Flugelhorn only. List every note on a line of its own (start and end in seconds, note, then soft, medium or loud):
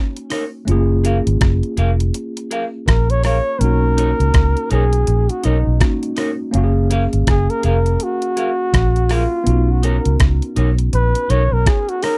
0.00 0.18 C#4 medium
2.87 3.12 A#4 medium
3.11 3.24 C#5 loud
3.25 3.62 C#5 loud
3.60 4.71 A#4 medium
4.71 5.31 G#4 medium
5.30 5.47 F#4 medium
5.45 5.81 D#4 medium
7.29 7.52 G#4 loud
7.50 7.64 A#4 loud
7.67 8.05 A#4 medium
8.03 9.15 F#4 loud
9.14 9.73 F4 loud
9.72 9.87 F#4 medium
9.85 10.21 A#4 medium
10.95 11.32 B4 loud
11.30 11.54 C#5 loud
11.53 11.69 A#4 medium
11.67 11.91 G#4 medium
11.89 12.05 F#4 medium
12.03 12.18 A#4 loud